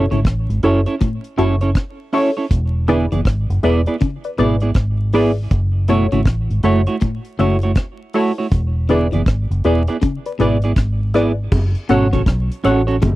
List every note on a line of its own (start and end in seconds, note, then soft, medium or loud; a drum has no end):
0.11 0.24 G#1 medium
0.11 0.21 C#3 medium
0.11 0.19 C#4 medium
0.11 0.19 E4 medium
0.11 0.19 A4 medium
0.11 0.19 C#5 medium
0.11 closed hi-hat soft
0.25 0.46 A1 medium
0.25 kick loud
0.25 cross-stick loud
0.25 closed hi-hat medium
0.49 0.62 G#1 medium
0.49 closed hi-hat soft
0.63 0.84 F#1 medium
0.63 0.79 C#4 medium
0.63 0.84 E4 medium
0.63 0.80 E4 medium
0.63 0.84 F#4 medium
0.63 0.84 A4 medium
0.63 0.80 A4 medium
0.63 0.84 C#5 medium
0.63 0.80 C#5 medium
0.63 closed hi-hat medium
0.86 0.95 C#4 soft
0.86 0.95 E4 medium
0.86 0.94 A4 medium
0.86 0.94 C#5 medium
0.86 closed hi-hat soft
1.01 1.17 A2 medium
1.01 kick loud
1.01 closed hi-hat medium
1.24 closed hi-hat soft
1.38 1.72 F#1 medium
1.38 1.54 C#3 medium
1.38 1.54 C#4 medium
1.38 1.58 E4 medium
1.38 1.55 E4 medium
1.38 1.58 F#4 medium
1.38 1.59 A4 medium
1.38 1.55 A4 medium
1.38 1.59 C#5 loud
1.38 1.55 C#5 medium
1.38 closed hi-hat medium
1.61 1.70 C#4 medium
1.61 1.70 E4 medium
1.61 1.70 A4 medium
1.61 1.69 C#5 medium
1.61 closed hi-hat medium
1.75 kick loud
1.75 cross-stick loud
1.75 closed hi-hat medium
2.13 2.29 C#4 medium
2.13 2.34 E4 medium
2.13 2.30 E4 medium
2.13 2.34 F#4 medium
2.13 2.30 A4 medium
2.13 2.34 A4 medium
2.13 2.34 C#5 loud
2.13 2.30 C#5 medium
2.13 open hi-hat medium
2.37 2.45 C#4 soft
2.37 2.45 E4 soft
2.37 2.45 A4 medium
2.37 2.44 C#5 medium
2.51 3.08 E1 loud
2.51 kick loud
2.51 closed hi-hat medium
2.88 3.05 D3 medium
2.88 3.05 B3 medium
2.88 3.09 E4 medium
2.88 3.05 E4 medium
2.88 3.09 G#4 medium
2.88 3.05 G#4 medium
2.88 3.09 B4 medium
2.88 3.09 D5 loud
2.88 3.05 D5 medium
2.88 closed hi-hat medium
3.12 3.25 F#1 medium
3.12 3.22 E3 medium
3.12 3.20 B3 soft
3.12 3.20 E4 soft
3.12 3.20 G#4 soft
3.12 3.20 D5 medium
3.12 closed hi-hat soft
3.25 3.47 G#1 medium
3.25 kick loud
3.25 cross-stick loud
3.25 closed hi-hat medium
3.50 3.62 F#1 medium
3.50 closed hi-hat soft
3.63 3.85 E1 medium
3.63 3.80 B3 medium
3.63 3.84 E4 medium
3.63 3.80 E4 medium
3.63 3.84 G#4 medium
3.63 3.80 G#4 loud
3.63 3.84 B4 medium
3.63 3.84 D5 medium
3.63 3.81 D5 loud
3.63 closed hi-hat medium
3.86 3.95 B3 medium
3.86 3.95 E4 medium
3.86 3.95 G#4 medium
3.86 3.93 B4 soft
3.86 3.95 D5 medium
3.86 3.93 D5 soft
3.86 closed hi-hat soft
4.00 4.17 C#3 medium
4.00 kick loud
4.00 closed hi-hat medium
4.24 4.30 B4 soft
4.24 4.30 D5 soft
4.24 closed hi-hat soft
4.38 4.73 G#1 medium
4.38 4.55 B2 medium
4.38 4.55 B3 medium
4.38 4.59 E4 medium
4.38 4.55 E4 medium
4.38 4.59 G#4 medium
4.38 4.56 G#4 medium
4.38 4.59 B4 medium
4.38 4.59 D5 loud
4.38 4.56 D5 medium
4.38 closed hi-hat medium
4.60 4.70 B3 soft
4.60 4.70 E4 medium
4.60 4.70 G#4 medium
4.60 4.70 D5 medium
4.60 closed hi-hat medium
4.74 5.47 G#1 medium
4.74 kick loud
4.74 cross-stick loud
4.74 closed hi-hat medium
5.13 5.30 B3 medium
5.13 5.34 E4 medium
5.13 5.30 E4 medium
5.13 5.34 G#4 medium
5.13 5.31 G#4 medium
5.13 5.34 B4 medium
5.13 5.35 D5 loud
5.13 5.31 D5 medium
5.13 open hi-hat medium
5.51 6.08 F#1 loud
5.51 kick loud
5.51 closed hi-hat medium
5.88 6.05 B2 medium
5.88 6.05 A3 medium
5.88 6.09 E4 medium
5.88 6.06 E4 medium
5.88 6.09 F#4 medium
5.88 6.06 F#4 medium
5.88 6.09 A4 medium
5.88 6.10 C#5 loud
5.88 6.06 C#5 medium
5.88 closed hi-hat medium
6.12 6.25 G#1 medium
6.12 6.22 C#3 medium
6.12 6.21 A3 medium
6.12 6.20 E4 medium
6.12 6.20 F#4 medium
6.12 6.20 C#5 medium
6.12 closed hi-hat soft
6.26 6.47 A1 medium
6.26 kick loud
6.26 cross-stick loud
6.26 closed hi-hat medium
6.50 6.63 G#1 medium
6.50 closed hi-hat soft
6.63 6.85 F#1 medium
6.63 6.80 A3 medium
6.63 6.84 E4 medium
6.63 6.80 E4 medium
6.63 6.84 F#4 medium
6.63 6.81 F#4 medium
6.63 6.85 A4 medium
6.63 6.85 C#5 loud
6.63 6.81 C#5 loud
6.63 closed hi-hat medium
6.87 6.96 A3 soft
6.87 6.96 E4 soft
6.87 6.95 F#4 medium
6.87 6.95 C#5 medium
6.87 closed hi-hat soft
7.01 7.18 A2 medium
7.01 kick loud
7.01 closed hi-hat medium
7.25 closed hi-hat soft
7.39 7.73 F#1 medium
7.39 7.55 C#3 medium
7.39 7.55 A3 medium
7.39 7.59 E4 medium
7.39 7.56 E4 medium
7.39 7.60 F#4 medium
7.39 7.56 F#4 medium
7.39 7.60 A4 medium
7.39 7.60 C#5 loud
7.39 7.56 C#5 medium
7.39 closed hi-hat medium
7.61 7.71 A3 soft
7.61 7.71 E4 medium
7.61 7.71 F#4 medium
7.61 7.71 C#5 medium
7.61 closed hi-hat soft
7.75 kick loud
7.75 cross-stick loud
7.75 closed hi-hat medium
8.13 8.31 A3 medium
8.13 8.35 E4 medium
8.13 8.31 E4 medium
8.13 8.35 F#4 medium
8.13 8.31 F#4 medium
8.13 8.35 A4 medium
8.13 8.35 C#5 loud
8.13 8.31 C#5 medium
8.13 open hi-hat medium
8.38 8.46 A3 medium
8.38 8.46 E4 medium
8.38 8.46 F#4 medium
8.38 8.46 C#5 medium
8.52 9.09 E1 loud
8.52 kick loud
8.52 closed hi-hat medium
8.89 9.05 D3 medium
8.89 9.06 B3 medium
8.89 9.10 E4 medium
8.89 9.06 E4 medium
8.89 9.10 G#4 medium
8.89 9.07 G#4 medium
8.89 9.10 B4 medium
8.89 9.10 D5 loud
8.89 9.07 D5 medium
8.89 closed hi-hat medium
9.12 9.26 F#1 medium
9.12 9.22 E3 medium
9.12 9.22 B3 soft
9.12 9.21 E4 medium
9.12 9.21 G#4 medium
9.12 9.21 D5 medium
9.12 closed hi-hat medium
9.26 9.48 G#1 medium
9.26 kick loud
9.26 cross-stick loud
9.26 closed hi-hat medium
9.50 9.63 F#1 medium
9.50 closed hi-hat soft
9.64 9.86 E1 medium
9.64 9.81 B3 medium
9.64 9.85 E4 medium
9.64 9.81 E4 medium
9.64 9.85 G#4 medium
9.64 9.82 G#4 medium
9.64 9.85 B4 medium
9.64 9.85 D5 medium
9.64 9.82 D5 medium
9.64 closed hi-hat medium
9.88 9.97 B3 medium
9.88 9.96 E4 medium
9.88 9.96 G#4 medium
9.88 9.94 B4 soft
9.88 9.96 D5 medium
9.88 9.94 D5 soft
9.88 closed hi-hat medium
10.02 10.18 C#3 medium
10.02 kick loud
10.02 closed hi-hat medium
10.26 10.32 B4 soft
10.26 10.32 D5 soft
10.26 closed hi-hat soft
10.39 10.74 G#1 medium
10.39 10.55 B2 medium
10.39 10.56 B3 medium
10.39 10.60 E4 medium
10.39 10.57 E4 medium
10.39 10.60 G#4 medium
10.39 10.57 G#4 medium
10.39 10.60 B4 medium
10.39 10.61 D5 medium
10.39 10.57 D5 medium
10.39 closed hi-hat medium
10.62 10.72 B3 soft
10.62 10.72 E4 medium
10.62 10.71 G#4 medium
10.62 10.71 D5 medium
10.62 closed hi-hat soft
10.76 11.48 G#1 medium
10.76 kick loud
10.76 cross-stick loud
10.76 closed hi-hat medium
11.14 11.31 B3 medium
11.14 11.35 E4 medium
11.14 11.31 E4 medium
11.14 11.35 G#4 medium
11.14 11.31 G#4 loud
11.14 11.35 B4 medium
11.14 11.35 D5 loud
11.14 11.32 D5 medium
11.14 cross-stick medium
11.14 closed hi-hat medium
11.52 11.73 F#1 loud
11.52 kick loud
11.52 crash medium
11.52 high bongo medium
11.75 closed hi-hat soft
11.89 12.11 G#1 medium
11.89 12.06 B2 medium
11.89 12.06 C#4 medium
11.89 12.10 F#4 medium
11.89 12.06 F#4 medium
11.89 12.10 A4 medium
11.89 12.07 A4 medium
11.89 12.10 C#5 medium
11.89 12.07 C#5 loud
11.89 12.10 F#5 loud
11.89 closed hi-hat medium
12.13 12.26 A1 medium
12.13 12.23 C#3 medium
12.13 12.22 C#4 soft
12.13 12.21 F#4 medium
12.13 12.21 A4 medium
12.13 12.21 C#5 medium
12.13 kick medium
12.13 closed hi-hat soft
12.26 12.48 B1 medium
12.26 kick loud
12.26 cross-stick loud
12.26 closed hi-hat medium
12.51 closed hi-hat soft
12.64 12.99 A1 medium
12.64 12.81 C#4 loud
12.64 12.85 F#4 medium
12.64 12.81 F#4 medium
12.64 12.81 A4 loud
12.64 12.85 A4 medium
12.64 12.81 C#5 loud
12.64 12.85 C#5 medium
12.64 12.85 F#5 loud
12.64 closed hi-hat medium
12.64 high bongo medium
12.87 12.96 C#4 medium
12.87 12.96 F#4 medium
12.87 12.96 A4 medium
12.87 12.95 C#5 medium
12.87 closed hi-hat soft
13.02 13.16 F#1 loud
13.02 13.16 A2 medium
13.02 kick loud
13.02 closed hi-hat medium
13.02 high bongo medium